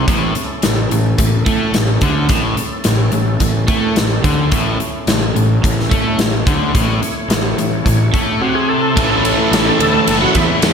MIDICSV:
0, 0, Header, 1, 9, 480
1, 0, Start_track
1, 0, Key_signature, 3, "major"
1, 0, Tempo, 556070
1, 61, Time_signature, 4, 2, 24, 8
1, 9262, End_track
2, 0, Start_track
2, 0, Title_t, "Tonewheel organ"
2, 0, Program_c, 0, 16
2, 7262, Note_on_c, 0, 66, 86
2, 7378, Note_on_c, 0, 68, 81
2, 7387, Note_off_c, 0, 66, 0
2, 7499, Note_on_c, 0, 69, 84
2, 7505, Note_off_c, 0, 68, 0
2, 8450, Note_off_c, 0, 69, 0
2, 8460, Note_on_c, 0, 69, 127
2, 8795, Note_off_c, 0, 69, 0
2, 8821, Note_on_c, 0, 66, 88
2, 8944, Note_off_c, 0, 66, 0
2, 8947, Note_on_c, 0, 64, 92
2, 9166, Note_off_c, 0, 64, 0
2, 9191, Note_on_c, 0, 64, 77
2, 9262, Note_off_c, 0, 64, 0
2, 9262, End_track
3, 0, Start_track
3, 0, Title_t, "Tonewheel organ"
3, 0, Program_c, 1, 16
3, 59, Note_on_c, 1, 64, 58
3, 59, Note_on_c, 1, 69, 54
3, 63, Note_on_c, 1, 61, 56
3, 1962, Note_off_c, 1, 69, 0
3, 1963, Note_off_c, 1, 64, 0
3, 1965, Note_off_c, 1, 61, 0
3, 1975, Note_on_c, 1, 69, 66
3, 1977, Note_on_c, 1, 61, 60
3, 1978, Note_on_c, 1, 64, 64
3, 3881, Note_off_c, 1, 69, 0
3, 3882, Note_off_c, 1, 61, 0
3, 3882, Note_off_c, 1, 64, 0
3, 3897, Note_on_c, 1, 64, 68
3, 3898, Note_on_c, 1, 57, 63
3, 3901, Note_on_c, 1, 61, 69
3, 5802, Note_off_c, 1, 64, 0
3, 5803, Note_off_c, 1, 57, 0
3, 5804, Note_off_c, 1, 61, 0
3, 5826, Note_on_c, 1, 73, 61
3, 5827, Note_on_c, 1, 57, 65
3, 5829, Note_on_c, 1, 64, 64
3, 7723, Note_off_c, 1, 64, 0
3, 7725, Note_off_c, 1, 73, 0
3, 7726, Note_off_c, 1, 57, 0
3, 7731, Note_on_c, 1, 69, 67
3, 7733, Note_on_c, 1, 64, 68
3, 7737, Note_on_c, 1, 61, 69
3, 9262, Note_off_c, 1, 61, 0
3, 9262, Note_off_c, 1, 64, 0
3, 9262, Note_off_c, 1, 69, 0
3, 9262, End_track
4, 0, Start_track
4, 0, Title_t, "Overdriven electric guitar"
4, 0, Program_c, 2, 29
4, 8087, Note_on_c, 2, 64, 66
4, 8098, Note_on_c, 2, 61, 57
4, 8106, Note_on_c, 2, 57, 62
4, 8221, Note_off_c, 2, 57, 0
4, 8227, Note_off_c, 2, 61, 0
4, 8230, Note_off_c, 2, 64, 0
4, 8815, Note_on_c, 2, 64, 78
4, 8826, Note_on_c, 2, 61, 62
4, 8836, Note_on_c, 2, 57, 59
4, 8927, Note_off_c, 2, 57, 0
4, 8933, Note_off_c, 2, 61, 0
4, 8947, Note_off_c, 2, 64, 0
4, 9262, End_track
5, 0, Start_track
5, 0, Title_t, "Overdriven electric guitar"
5, 0, Program_c, 3, 29
5, 68, Note_on_c, 3, 45, 83
5, 298, Note_off_c, 3, 45, 0
5, 550, Note_on_c, 3, 45, 59
5, 738, Note_off_c, 3, 45, 0
5, 795, Note_on_c, 3, 45, 70
5, 981, Note_off_c, 3, 45, 0
5, 1030, Note_on_c, 3, 45, 69
5, 1218, Note_off_c, 3, 45, 0
5, 1266, Note_on_c, 3, 57, 83
5, 1497, Note_off_c, 3, 57, 0
5, 1506, Note_on_c, 3, 45, 65
5, 1697, Note_off_c, 3, 45, 0
5, 1749, Note_on_c, 3, 50, 84
5, 1973, Note_off_c, 3, 50, 0
5, 1976, Note_on_c, 3, 45, 89
5, 2207, Note_off_c, 3, 45, 0
5, 2461, Note_on_c, 3, 45, 65
5, 2654, Note_off_c, 3, 45, 0
5, 2699, Note_on_c, 3, 45, 71
5, 2893, Note_off_c, 3, 45, 0
5, 2946, Note_on_c, 3, 45, 75
5, 3137, Note_off_c, 3, 45, 0
5, 3172, Note_on_c, 3, 57, 94
5, 3411, Note_off_c, 3, 57, 0
5, 3417, Note_on_c, 3, 45, 63
5, 3612, Note_off_c, 3, 45, 0
5, 3665, Note_on_c, 3, 50, 96
5, 3894, Note_off_c, 3, 50, 0
5, 3897, Note_on_c, 3, 45, 99
5, 4134, Note_off_c, 3, 45, 0
5, 4384, Note_on_c, 3, 45, 72
5, 4576, Note_off_c, 3, 45, 0
5, 4627, Note_on_c, 3, 45, 62
5, 4818, Note_off_c, 3, 45, 0
5, 4867, Note_on_c, 3, 45, 76
5, 5058, Note_off_c, 3, 45, 0
5, 5102, Note_on_c, 3, 57, 91
5, 5336, Note_off_c, 3, 57, 0
5, 5350, Note_on_c, 3, 45, 60
5, 5540, Note_off_c, 3, 45, 0
5, 5583, Note_on_c, 3, 50, 88
5, 5817, Note_off_c, 3, 50, 0
5, 5829, Note_on_c, 3, 45, 86
5, 6048, Note_off_c, 3, 45, 0
5, 6306, Note_on_c, 3, 45, 69
5, 6497, Note_off_c, 3, 45, 0
5, 6550, Note_on_c, 3, 45, 66
5, 6739, Note_off_c, 3, 45, 0
5, 6796, Note_on_c, 3, 45, 68
5, 6982, Note_off_c, 3, 45, 0
5, 7026, Note_on_c, 3, 57, 85
5, 7258, Note_off_c, 3, 57, 0
5, 7263, Note_on_c, 3, 48, 90
5, 7729, Note_off_c, 3, 48, 0
5, 7733, Note_on_c, 3, 45, 91
5, 7739, Note_on_c, 3, 52, 79
5, 7748, Note_on_c, 3, 57, 97
5, 7749, Note_on_c, 3, 61, 101
5, 7760, Note_on_c, 3, 64, 101
5, 7972, Note_off_c, 3, 52, 0
5, 7975, Note_on_c, 3, 52, 74
5, 7979, Note_off_c, 3, 57, 0
5, 7983, Note_on_c, 3, 57, 77
5, 7988, Note_off_c, 3, 61, 0
5, 7992, Note_on_c, 3, 61, 77
5, 7995, Note_off_c, 3, 64, 0
5, 7998, Note_on_c, 3, 64, 74
5, 8204, Note_off_c, 3, 45, 0
5, 8208, Note_on_c, 3, 45, 85
5, 8209, Note_off_c, 3, 52, 0
5, 8212, Note_on_c, 3, 52, 104
5, 8217, Note_off_c, 3, 57, 0
5, 8220, Note_on_c, 3, 57, 99
5, 8225, Note_off_c, 3, 61, 0
5, 8227, Note_off_c, 3, 64, 0
5, 8229, Note_on_c, 3, 61, 99
5, 8231, Note_on_c, 3, 64, 117
5, 8327, Note_off_c, 3, 64, 0
5, 8330, Note_on_c, 3, 64, 70
5, 8332, Note_off_c, 3, 61, 0
5, 8342, Note_on_c, 3, 61, 76
5, 8346, Note_off_c, 3, 57, 0
5, 8356, Note_on_c, 3, 57, 59
5, 8455, Note_off_c, 3, 57, 0
5, 8455, Note_off_c, 3, 61, 0
5, 8457, Note_off_c, 3, 52, 0
5, 8463, Note_off_c, 3, 64, 0
5, 8558, Note_on_c, 3, 64, 70
5, 8573, Note_on_c, 3, 61, 63
5, 8574, Note_off_c, 3, 45, 0
5, 8582, Note_on_c, 3, 57, 53
5, 8672, Note_on_c, 3, 52, 83
5, 8675, Note_off_c, 3, 57, 0
5, 8680, Note_off_c, 3, 61, 0
5, 8686, Note_on_c, 3, 57, 86
5, 8691, Note_on_c, 3, 61, 85
5, 8697, Note_off_c, 3, 64, 0
5, 8700, Note_on_c, 3, 64, 97
5, 8915, Note_off_c, 3, 57, 0
5, 8916, Note_off_c, 3, 52, 0
5, 8920, Note_on_c, 3, 52, 66
5, 8922, Note_off_c, 3, 61, 0
5, 8925, Note_on_c, 3, 57, 68
5, 8932, Note_on_c, 3, 61, 75
5, 8937, Note_off_c, 3, 64, 0
5, 8940, Note_on_c, 3, 64, 80
5, 9165, Note_off_c, 3, 52, 0
5, 9167, Note_on_c, 3, 45, 103
5, 9168, Note_on_c, 3, 52, 90
5, 9169, Note_off_c, 3, 57, 0
5, 9173, Note_off_c, 3, 61, 0
5, 9179, Note_on_c, 3, 57, 92
5, 9183, Note_off_c, 3, 64, 0
5, 9183, Note_on_c, 3, 61, 94
5, 9187, Note_on_c, 3, 64, 91
5, 9262, Note_off_c, 3, 45, 0
5, 9262, Note_off_c, 3, 52, 0
5, 9262, Note_off_c, 3, 57, 0
5, 9262, Note_off_c, 3, 61, 0
5, 9262, Note_off_c, 3, 64, 0
5, 9262, End_track
6, 0, Start_track
6, 0, Title_t, "Picked electric bass"
6, 0, Program_c, 4, 34
6, 61, Note_on_c, 4, 33, 96
6, 285, Note_off_c, 4, 33, 0
6, 545, Note_on_c, 4, 33, 64
6, 767, Note_off_c, 4, 33, 0
6, 782, Note_on_c, 4, 33, 59
6, 1005, Note_off_c, 4, 33, 0
6, 1020, Note_on_c, 4, 33, 69
6, 1245, Note_off_c, 4, 33, 0
6, 1260, Note_on_c, 4, 45, 75
6, 1485, Note_off_c, 4, 45, 0
6, 1492, Note_on_c, 4, 33, 73
6, 1720, Note_off_c, 4, 33, 0
6, 1735, Note_on_c, 4, 38, 93
6, 1962, Note_off_c, 4, 38, 0
6, 1973, Note_on_c, 4, 33, 98
6, 2201, Note_off_c, 4, 33, 0
6, 2461, Note_on_c, 4, 33, 74
6, 2685, Note_off_c, 4, 33, 0
6, 2698, Note_on_c, 4, 33, 62
6, 2924, Note_off_c, 4, 33, 0
6, 2935, Note_on_c, 4, 33, 68
6, 3162, Note_off_c, 4, 33, 0
6, 3179, Note_on_c, 4, 45, 82
6, 3404, Note_off_c, 4, 45, 0
6, 3413, Note_on_c, 4, 33, 81
6, 3642, Note_off_c, 4, 33, 0
6, 3656, Note_on_c, 4, 38, 99
6, 3883, Note_off_c, 4, 38, 0
6, 3900, Note_on_c, 4, 33, 91
6, 4125, Note_off_c, 4, 33, 0
6, 4377, Note_on_c, 4, 33, 75
6, 4604, Note_off_c, 4, 33, 0
6, 4612, Note_on_c, 4, 33, 64
6, 4841, Note_off_c, 4, 33, 0
6, 4864, Note_on_c, 4, 33, 71
6, 5088, Note_off_c, 4, 33, 0
6, 5098, Note_on_c, 4, 45, 78
6, 5324, Note_off_c, 4, 45, 0
6, 5328, Note_on_c, 4, 33, 72
6, 5559, Note_off_c, 4, 33, 0
6, 5577, Note_on_c, 4, 38, 84
6, 5804, Note_off_c, 4, 38, 0
6, 5817, Note_on_c, 4, 33, 91
6, 6044, Note_off_c, 4, 33, 0
6, 6289, Note_on_c, 4, 33, 73
6, 6519, Note_off_c, 4, 33, 0
6, 6529, Note_on_c, 4, 33, 61
6, 6759, Note_off_c, 4, 33, 0
6, 6781, Note_on_c, 4, 33, 66
6, 7006, Note_off_c, 4, 33, 0
6, 7016, Note_on_c, 4, 45, 77
6, 7243, Note_off_c, 4, 45, 0
6, 7742, Note_on_c, 4, 33, 99
6, 8049, Note_off_c, 4, 33, 0
6, 8212, Note_on_c, 4, 33, 95
6, 8369, Note_off_c, 4, 33, 0
6, 8455, Note_on_c, 4, 38, 84
6, 8610, Note_off_c, 4, 38, 0
6, 8698, Note_on_c, 4, 30, 90
6, 8852, Note_off_c, 4, 30, 0
6, 8934, Note_on_c, 4, 40, 94
6, 9089, Note_off_c, 4, 40, 0
6, 9174, Note_on_c, 4, 40, 95
6, 9262, Note_off_c, 4, 40, 0
6, 9262, End_track
7, 0, Start_track
7, 0, Title_t, "Muted overdriven electric guitar strokes"
7, 308, Note_on_c, 9, 29, 48
7, 394, Note_off_c, 9, 29, 0
7, 2217, Note_on_c, 9, 29, 48
7, 2303, Note_off_c, 9, 29, 0
7, 4143, Note_on_c, 9, 29, 51
7, 4229, Note_off_c, 9, 29, 0
7, 6059, Note_on_c, 9, 29, 50
7, 6145, Note_off_c, 9, 29, 0
7, 8461, Note_on_c, 9, 29, 42
7, 8547, Note_off_c, 9, 29, 0
7, 8583, Note_on_c, 9, 29, 50
7, 8669, Note_off_c, 9, 29, 0
7, 9060, Note_on_c, 9, 29, 58
7, 9147, Note_off_c, 9, 29, 0
7, 9262, End_track
8, 0, Start_track
8, 0, Title_t, "Muted picked electric bass strokes"
8, 297, Note_on_c, 9, 29, 35
8, 383, Note_off_c, 9, 29, 0
8, 2219, Note_on_c, 9, 29, 36
8, 2305, Note_off_c, 9, 29, 0
8, 4143, Note_on_c, 9, 29, 38
8, 4230, Note_off_c, 9, 29, 0
8, 6060, Note_on_c, 9, 29, 36
8, 6147, Note_off_c, 9, 29, 0
8, 9262, End_track
9, 0, Start_track
9, 0, Title_t, "Drums"
9, 67, Note_on_c, 9, 36, 94
9, 69, Note_on_c, 9, 42, 86
9, 153, Note_off_c, 9, 36, 0
9, 155, Note_off_c, 9, 42, 0
9, 303, Note_on_c, 9, 42, 53
9, 389, Note_off_c, 9, 42, 0
9, 539, Note_on_c, 9, 42, 83
9, 547, Note_on_c, 9, 38, 94
9, 625, Note_off_c, 9, 42, 0
9, 633, Note_off_c, 9, 38, 0
9, 788, Note_on_c, 9, 42, 53
9, 875, Note_off_c, 9, 42, 0
9, 1022, Note_on_c, 9, 42, 83
9, 1023, Note_on_c, 9, 36, 82
9, 1108, Note_off_c, 9, 42, 0
9, 1110, Note_off_c, 9, 36, 0
9, 1262, Note_on_c, 9, 42, 53
9, 1263, Note_on_c, 9, 36, 87
9, 1348, Note_off_c, 9, 42, 0
9, 1350, Note_off_c, 9, 36, 0
9, 1500, Note_on_c, 9, 42, 77
9, 1508, Note_on_c, 9, 38, 102
9, 1587, Note_off_c, 9, 42, 0
9, 1594, Note_off_c, 9, 38, 0
9, 1735, Note_on_c, 9, 42, 57
9, 1741, Note_on_c, 9, 36, 95
9, 1822, Note_off_c, 9, 42, 0
9, 1827, Note_off_c, 9, 36, 0
9, 1975, Note_on_c, 9, 42, 78
9, 1981, Note_on_c, 9, 36, 94
9, 2061, Note_off_c, 9, 42, 0
9, 2067, Note_off_c, 9, 36, 0
9, 2220, Note_on_c, 9, 42, 48
9, 2306, Note_off_c, 9, 42, 0
9, 2451, Note_on_c, 9, 42, 78
9, 2459, Note_on_c, 9, 38, 93
9, 2538, Note_off_c, 9, 42, 0
9, 2546, Note_off_c, 9, 38, 0
9, 2691, Note_on_c, 9, 42, 51
9, 2777, Note_off_c, 9, 42, 0
9, 2936, Note_on_c, 9, 42, 69
9, 2938, Note_on_c, 9, 36, 76
9, 3022, Note_off_c, 9, 42, 0
9, 3025, Note_off_c, 9, 36, 0
9, 3175, Note_on_c, 9, 42, 51
9, 3179, Note_on_c, 9, 36, 94
9, 3261, Note_off_c, 9, 42, 0
9, 3265, Note_off_c, 9, 36, 0
9, 3419, Note_on_c, 9, 42, 69
9, 3427, Note_on_c, 9, 38, 108
9, 3505, Note_off_c, 9, 42, 0
9, 3513, Note_off_c, 9, 38, 0
9, 3661, Note_on_c, 9, 42, 61
9, 3662, Note_on_c, 9, 36, 95
9, 3747, Note_off_c, 9, 42, 0
9, 3748, Note_off_c, 9, 36, 0
9, 3898, Note_on_c, 9, 42, 82
9, 3902, Note_on_c, 9, 36, 99
9, 3984, Note_off_c, 9, 42, 0
9, 3988, Note_off_c, 9, 36, 0
9, 4145, Note_on_c, 9, 42, 49
9, 4231, Note_off_c, 9, 42, 0
9, 4379, Note_on_c, 9, 42, 77
9, 4387, Note_on_c, 9, 38, 101
9, 4465, Note_off_c, 9, 42, 0
9, 4473, Note_off_c, 9, 38, 0
9, 4629, Note_on_c, 9, 42, 52
9, 4715, Note_off_c, 9, 42, 0
9, 4868, Note_on_c, 9, 36, 83
9, 4875, Note_on_c, 9, 42, 82
9, 4954, Note_off_c, 9, 36, 0
9, 4961, Note_off_c, 9, 42, 0
9, 5001, Note_on_c, 9, 38, 30
9, 5087, Note_off_c, 9, 38, 0
9, 5106, Note_on_c, 9, 36, 90
9, 5111, Note_on_c, 9, 42, 53
9, 5192, Note_off_c, 9, 36, 0
9, 5197, Note_off_c, 9, 42, 0
9, 5341, Note_on_c, 9, 42, 80
9, 5349, Note_on_c, 9, 38, 110
9, 5428, Note_off_c, 9, 42, 0
9, 5435, Note_off_c, 9, 38, 0
9, 5583, Note_on_c, 9, 36, 106
9, 5584, Note_on_c, 9, 42, 62
9, 5669, Note_off_c, 9, 36, 0
9, 5670, Note_off_c, 9, 42, 0
9, 5824, Note_on_c, 9, 36, 91
9, 5827, Note_on_c, 9, 42, 86
9, 5911, Note_off_c, 9, 36, 0
9, 5913, Note_off_c, 9, 42, 0
9, 6065, Note_on_c, 9, 42, 56
9, 6152, Note_off_c, 9, 42, 0
9, 6302, Note_on_c, 9, 42, 76
9, 6310, Note_on_c, 9, 38, 109
9, 6388, Note_off_c, 9, 42, 0
9, 6396, Note_off_c, 9, 38, 0
9, 6547, Note_on_c, 9, 42, 57
9, 6633, Note_off_c, 9, 42, 0
9, 6783, Note_on_c, 9, 36, 78
9, 6790, Note_on_c, 9, 42, 75
9, 6869, Note_off_c, 9, 36, 0
9, 6876, Note_off_c, 9, 42, 0
9, 7024, Note_on_c, 9, 36, 91
9, 7034, Note_on_c, 9, 42, 50
9, 7110, Note_off_c, 9, 36, 0
9, 7120, Note_off_c, 9, 42, 0
9, 7743, Note_on_c, 9, 36, 112
9, 7745, Note_on_c, 9, 51, 96
9, 7829, Note_off_c, 9, 36, 0
9, 7831, Note_off_c, 9, 51, 0
9, 7984, Note_on_c, 9, 51, 69
9, 8070, Note_off_c, 9, 51, 0
9, 8226, Note_on_c, 9, 51, 100
9, 8234, Note_on_c, 9, 38, 113
9, 8313, Note_off_c, 9, 51, 0
9, 8320, Note_off_c, 9, 38, 0
9, 8462, Note_on_c, 9, 51, 80
9, 8549, Note_off_c, 9, 51, 0
9, 8697, Note_on_c, 9, 51, 102
9, 8783, Note_off_c, 9, 51, 0
9, 8932, Note_on_c, 9, 51, 72
9, 8937, Note_on_c, 9, 36, 75
9, 9018, Note_off_c, 9, 51, 0
9, 9023, Note_off_c, 9, 36, 0
9, 9169, Note_on_c, 9, 51, 103
9, 9177, Note_on_c, 9, 38, 111
9, 9256, Note_off_c, 9, 51, 0
9, 9262, Note_off_c, 9, 38, 0
9, 9262, End_track
0, 0, End_of_file